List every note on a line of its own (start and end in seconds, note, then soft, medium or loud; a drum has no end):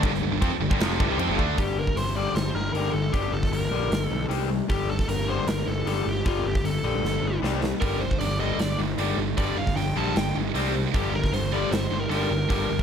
0.02 0.10 G1 loud
0.02 0.11 G2 medium
0.02 0.12 D3 loud
0.02 kick loud
0.02 crash soft
0.11 0.20 G1 medium
0.11 0.21 G2 medium
0.11 0.21 D3 medium
0.11 snare soft
0.21 0.30 G1 medium
0.21 0.31 G2 medium
0.21 0.31 D3 medium
0.31 0.40 G1 medium
0.31 0.42 G2 medium
0.31 0.41 D3 medium
0.41 0.50 F2 loud
0.41 0.50 F3 medium
0.41 0.51 C4 medium
0.41 kick loud
0.41 crash medium
0.51 muted picked electric bass stroke soft
0.51 muted distorted electric guitar stroke medium
0.51 muted overdriven electric guitar stroke medium
0.60 0.69 G1 medium
0.60 0.69 G2 medium
0.60 0.71 D3 medium
0.71 0.79 G1 medium
0.71 0.80 G2 medium
0.71 0.80 D3 medium
0.71 kick loud
0.79 0.98 F1 loud
0.79 0.99 F2 loud
0.79 0.99 C3 loud
0.79 1.00 F3 loud
0.79 snare loud
0.79 crash medium
0.99 1.08 G1 medium
0.99 1.09 G2 medium
0.99 1.09 D3 loud
0.99 kick loud
1.08 1.17 C2 medium
1.08 1.18 C3 medium
1.08 1.19 G3 medium
1.18 1.27 F2 medium
1.18 1.28 F3 medium
1.18 1.29 C4 loud
1.18 crash medium
1.28 1.37 G1 loud
1.28 1.38 G2 medium
1.28 1.37 D3 medium
1.38 1.57 D2 medium
1.38 1.57 D3 loud
1.38 1.57 A3 medium
1.38 1.58 D4 loud
1.38 kick medium
1.57 1.88 G1 medium
1.57 1.76 G2 medium
1.57 1.76 D3 medium
1.57 1.76 G3 medium
1.57 1.78 G4 medium
1.57 kick medium
1.57 open hi-hat soft
1.77 1.94 G2 medium
1.77 1.95 D3 medium
1.77 1.97 A#4 medium
1.87 kick medium
1.95 2.26 G1 medium
1.95 2.14 G2 medium
1.95 2.14 D3 medium
1.95 2.16 C5 medium
1.95 open hi-hat soft
2.16 2.34 G2 medium
2.16 2.35 D3 medium
2.16 2.35 G3 medium
2.16 2.35 D5 medium
2.35 2.50 G1 medium
2.35 2.53 G2 medium
2.35 2.53 D3 medium
2.35 2.55 C5 medium
2.35 snare loud
2.35 open hi-hat soft
2.54 2.70 G1 medium
2.54 2.73 G2 medium
2.54 2.73 D3 medium
2.54 2.72 A#4 medium
2.73 2.89 G1 medium
2.73 2.93 G2 medium
2.73 2.93 D3 medium
2.73 2.93 G3 medium
2.73 2.93 A#4 medium
2.73 open hi-hat soft
2.93 3.08 G1 medium
2.93 3.11 G2 medium
2.93 3.12 D3 medium
2.93 3.14 A4 medium
3.12 3.29 G1 medium
3.12 3.30 G2 medium
3.12 3.31 D3 medium
3.12 3.32 G3 medium
3.12 3.33 G4 medium
3.12 kick medium
3.12 open hi-hat soft
3.32 3.47 G1 medium
3.32 3.50 G2 medium
3.32 3.50 D3 medium
3.32 3.52 A4 medium
3.43 kick medium
3.43 snare soft
3.52 3.67 G1 medium
3.52 3.69 G2 medium
3.52 3.70 D3 medium
3.52 4.04 A#4 medium
3.52 open hi-hat soft
3.70 3.87 A#1 medium
3.70 3.89 G2 medium
3.70 3.90 D3 medium
3.70 3.90 G3 medium
3.90 4.06 G1 medium
3.90 4.09 G2 medium
3.90 4.09 D3 medium
3.90 snare medium
3.90 open hi-hat soft
4.04 4.27 A4 medium
4.10 4.26 B1 medium
4.10 4.28 G2 medium
4.10 4.28 D3 medium
4.29 4.60 C2 medium
4.29 4.48 C3 medium
4.29 4.48 G3 medium
4.29 4.49 C4 medium
4.29 open hi-hat soft
4.49 4.67 C3 medium
4.49 4.67 G3 medium
4.69 5.00 G1 medium
4.69 4.87 G2 medium
4.69 4.88 D3 medium
4.69 4.88 G3 medium
4.69 4.90 G4 medium
4.69 kick medium
4.69 open hi-hat soft
4.89 5.07 G2 medium
4.89 5.07 D3 medium
4.89 5.09 A4 medium
4.99 kick medium
4.99 snare soft
5.07 5.38 G1 medium
5.07 5.26 G2 medium
5.07 5.26 D3 medium
5.07 5.30 A#4 medium
5.07 open hi-hat soft
5.27 5.46 G2 medium
5.27 5.46 D3 medium
5.27 5.47 G3 medium
5.27 5.48 C5 medium
5.47 5.62 G1 medium
5.47 5.65 G2 medium
5.47 5.65 D3 medium
5.47 5.68 A#4 medium
5.47 snare loud
5.47 open hi-hat soft
5.66 5.82 G1 medium
5.66 5.84 G2 medium
5.66 5.84 D3 medium
5.66 5.87 A4 medium
5.85 6.01 G1 medium
5.85 6.04 G2 medium
5.85 6.05 D3 medium
5.85 6.05 G3 medium
5.85 6.09 A4 medium
5.85 open hi-hat soft
6.06 6.21 G1 medium
6.06 6.23 G2 medium
6.06 6.24 D3 medium
6.06 6.27 G4 medium
6.25 6.41 G1 medium
6.25 6.43 G2 medium
6.25 6.43 D3 medium
6.25 6.44 G3 medium
6.25 6.45 F4 medium
6.25 kick medium
6.25 open hi-hat soft
6.44 6.60 G1 medium
6.44 6.62 G2 medium
6.44 6.62 D3 medium
6.44 6.65 G4 medium
6.55 kick medium
6.55 snare soft
6.63 6.79 G1 medium
6.63 6.82 G2 medium
6.63 6.82 D3 medium
6.63 7.39 A4 medium
6.63 open hi-hat soft
6.83 6.99 A#1 medium
6.83 7.02 G2 medium
6.83 7.02 D3 medium
6.83 7.02 G3 medium
7.03 7.18 G1 medium
7.03 7.21 G2 medium
7.03 7.21 D3 medium
7.03 snare medium
7.22 7.38 G1 medium
7.22 7.40 G2 medium
7.22 7.41 D3 medium
7.42 7.72 C2 medium
7.42 7.61 C3 medium
7.42 7.61 G3 medium
7.42 7.61 C4 medium
7.42 snare medium
7.62 7.79 C3 medium
7.62 7.80 G3 medium
7.62 snare medium
7.81 8.12 G1 medium
7.81 8.00 G2 medium
7.81 8.00 D3 medium
7.81 8.00 G3 medium
7.81 8.01 A#4 medium
7.81 kick medium
7.81 open hi-hat soft
8.00 8.18 G2 medium
8.00 8.19 D3 medium
8.00 8.19 C5 medium
8.11 kick medium
8.19 8.50 G1 medium
8.19 8.38 G2 medium
8.19 8.38 D3 medium
8.19 8.39 D5 medium
8.19 open hi-hat soft
8.40 8.58 G2 medium
8.40 8.59 D3 medium
8.40 8.59 G3 medium
8.40 8.60 D#5 medium
8.58 8.74 G1 medium
8.58 8.77 G2 medium
8.58 8.77 D3 medium
8.58 8.79 D5 medium
8.58 snare medium
8.58 open hi-hat soft
8.79 8.94 G1 medium
8.79 8.96 G2 medium
8.79 8.97 D3 medium
8.97 9.13 G1 medium
8.97 9.16 G2 medium
8.97 9.17 D3 medium
8.97 9.17 G3 loud
8.97 open hi-hat soft
9.17 9.33 G1 medium
9.17 9.35 G2 medium
9.17 9.36 D3 medium
9.37 9.53 G1 medium
9.37 9.55 G2 medium
9.37 9.55 D3 medium
9.37 9.56 G3 loud
9.37 9.58 D5 medium
9.37 kick medium
9.37 open hi-hat soft
9.56 9.72 G1 medium
9.56 9.74 G2 medium
9.56 9.74 D3 medium
9.56 9.76 F5 medium
9.67 kick medium
9.67 snare soft
9.76 9.92 G1 medium
9.76 9.94 G2 medium
9.76 9.94 D3 medium
9.76 9.97 G5 medium
9.76 open hi-hat soft
9.96 10.11 A#1 medium
9.96 10.14 G2 medium
9.96 10.15 D3 medium
9.96 10.15 G3 medium
9.96 10.17 A5 medium
10.16 10.31 G1 medium
10.16 10.33 G2 medium
10.16 10.33 D3 medium
10.16 10.35 G5 medium
10.16 snare loud
10.16 open hi-hat soft
10.35 10.51 G1 medium
10.35 10.53 G2 medium
10.35 10.53 D3 medium
10.54 10.85 C2 medium
10.54 10.73 C3 medium
10.54 10.73 G3 medium
10.54 10.74 C4 medium
10.54 open hi-hat soft
10.74 10.92 C3 medium
10.74 10.92 G3 medium
10.93 11.24 G1 medium
10.93 11.12 G2 medium
10.93 11.12 D3 medium
10.93 11.13 G3 medium
10.93 11.15 G4 medium
10.93 kick loud
10.93 open hi-hat soft
11.13 11.31 G2 medium
11.13 11.31 D3 medium
11.13 11.33 A#4 medium
11.24 kick medium
11.24 snare soft
11.32 11.63 G1 medium
11.32 11.50 G2 medium
11.32 11.50 D3 medium
11.32 11.53 C5 loud
11.32 open hi-hat soft
11.53 11.71 G2 medium
11.53 11.71 D3 medium
11.53 11.71 G3 medium
11.53 11.72 D5 medium
11.71 11.87 G1 medium
11.71 11.90 G2 medium
11.71 11.90 D3 medium
11.71 12.02 C5 medium
11.71 snare loud
11.71 open hi-hat medium
11.91 12.06 G1 medium
11.91 12.09 G2 medium
11.91 12.09 D3 medium
12.00 12.08 A#4 medium
12.10 12.26 G1 medium
12.10 12.29 G2 medium
12.10 12.29 D3 medium
12.10 12.29 G3 medium
12.10 12.83 A#4 medium
12.10 open hi-hat soft
12.30 12.45 G1 medium
12.30 12.48 G2 medium
12.30 12.48 D3 medium
12.49 12.65 G1 medium
12.49 12.68 G2 medium
12.49 12.68 D3 medium
12.49 12.68 G3 loud
12.49 kick medium
12.49 open hi-hat soft
12.69 12.83 G1 medium
12.69 12.83 G2 medium
12.69 12.83 D3 medium
12.79 kick medium